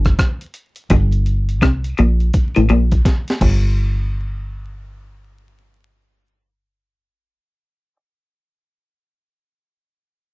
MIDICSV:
0, 0, Header, 1, 4, 480
1, 0, Start_track
1, 0, Key_signature, -2, "minor"
1, 0, Tempo, 715137
1, 605, Time_signature, 4, 2, 24, 8
1, 6940, End_track
2, 0, Start_track
2, 0, Title_t, "Clean electric guitar"
2, 0, Program_c, 0, 27
2, 613, Note_on_c, 0, 43, 89
2, 755, Note_off_c, 0, 43, 0
2, 1091, Note_on_c, 0, 48, 68
2, 1234, Note_off_c, 0, 48, 0
2, 1334, Note_on_c, 0, 46, 75
2, 1475, Note_off_c, 0, 46, 0
2, 1720, Note_on_c, 0, 45, 69
2, 1774, Note_off_c, 0, 45, 0
2, 1812, Note_on_c, 0, 46, 73
2, 1954, Note_off_c, 0, 46, 0
2, 6940, End_track
3, 0, Start_track
3, 0, Title_t, "Fingered electric bass"
3, 0, Program_c, 1, 33
3, 0, Note_on_c, 1, 31, 87
3, 97, Note_off_c, 1, 31, 0
3, 610, Note_on_c, 1, 31, 102
3, 1088, Note_off_c, 1, 31, 0
3, 1088, Note_on_c, 1, 36, 86
3, 1295, Note_off_c, 1, 36, 0
3, 1338, Note_on_c, 1, 34, 79
3, 1541, Note_off_c, 1, 34, 0
3, 1727, Note_on_c, 1, 33, 80
3, 1801, Note_off_c, 1, 33, 0
3, 1814, Note_on_c, 1, 34, 84
3, 2019, Note_off_c, 1, 34, 0
3, 2291, Note_on_c, 1, 31, 95
3, 5341, Note_off_c, 1, 31, 0
3, 6940, End_track
4, 0, Start_track
4, 0, Title_t, "Drums"
4, 32, Note_on_c, 9, 42, 57
4, 37, Note_on_c, 9, 36, 83
4, 38, Note_on_c, 9, 37, 65
4, 99, Note_off_c, 9, 42, 0
4, 105, Note_off_c, 9, 36, 0
4, 105, Note_off_c, 9, 37, 0
4, 126, Note_on_c, 9, 36, 111
4, 126, Note_on_c, 9, 42, 96
4, 129, Note_on_c, 9, 37, 114
4, 193, Note_off_c, 9, 36, 0
4, 193, Note_off_c, 9, 42, 0
4, 197, Note_off_c, 9, 37, 0
4, 276, Note_on_c, 9, 42, 55
4, 343, Note_off_c, 9, 42, 0
4, 362, Note_on_c, 9, 42, 69
4, 429, Note_off_c, 9, 42, 0
4, 509, Note_on_c, 9, 42, 51
4, 576, Note_off_c, 9, 42, 0
4, 603, Note_on_c, 9, 42, 90
4, 606, Note_on_c, 9, 36, 110
4, 670, Note_off_c, 9, 42, 0
4, 673, Note_off_c, 9, 36, 0
4, 754, Note_on_c, 9, 42, 44
4, 822, Note_off_c, 9, 42, 0
4, 846, Note_on_c, 9, 42, 75
4, 913, Note_off_c, 9, 42, 0
4, 998, Note_on_c, 9, 42, 45
4, 1065, Note_off_c, 9, 42, 0
4, 1087, Note_on_c, 9, 36, 108
4, 1090, Note_on_c, 9, 42, 80
4, 1094, Note_on_c, 9, 37, 112
4, 1154, Note_off_c, 9, 36, 0
4, 1157, Note_off_c, 9, 42, 0
4, 1161, Note_off_c, 9, 37, 0
4, 1237, Note_on_c, 9, 42, 53
4, 1304, Note_off_c, 9, 42, 0
4, 1328, Note_on_c, 9, 42, 57
4, 1395, Note_off_c, 9, 42, 0
4, 1479, Note_on_c, 9, 42, 48
4, 1546, Note_off_c, 9, 42, 0
4, 1568, Note_on_c, 9, 42, 86
4, 1571, Note_on_c, 9, 36, 109
4, 1635, Note_off_c, 9, 42, 0
4, 1638, Note_off_c, 9, 36, 0
4, 1719, Note_on_c, 9, 42, 57
4, 1786, Note_off_c, 9, 42, 0
4, 1808, Note_on_c, 9, 42, 74
4, 1875, Note_off_c, 9, 42, 0
4, 1957, Note_on_c, 9, 42, 53
4, 1960, Note_on_c, 9, 36, 89
4, 2024, Note_off_c, 9, 42, 0
4, 2027, Note_off_c, 9, 36, 0
4, 2049, Note_on_c, 9, 36, 110
4, 2052, Note_on_c, 9, 42, 92
4, 2055, Note_on_c, 9, 38, 57
4, 2116, Note_off_c, 9, 36, 0
4, 2119, Note_off_c, 9, 42, 0
4, 2122, Note_off_c, 9, 38, 0
4, 2200, Note_on_c, 9, 42, 53
4, 2215, Note_on_c, 9, 38, 69
4, 2267, Note_off_c, 9, 42, 0
4, 2282, Note_off_c, 9, 38, 0
4, 2289, Note_on_c, 9, 36, 107
4, 2290, Note_on_c, 9, 49, 85
4, 2356, Note_off_c, 9, 36, 0
4, 2357, Note_off_c, 9, 49, 0
4, 6940, End_track
0, 0, End_of_file